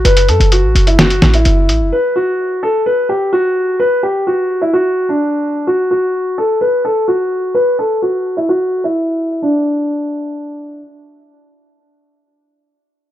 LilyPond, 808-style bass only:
\new Staff \with { instrumentName = "808-style bass" } { \clef bass \time 4/4 \key fis \phrygian \tempo 4 = 128 fis,,8 fis,16 fis,,8 a,,16 fis,,4 a,,8 fis,,8 a,,16 fis,,16 | r1 | r1 | r1 |
r1 | r1 | r1 | }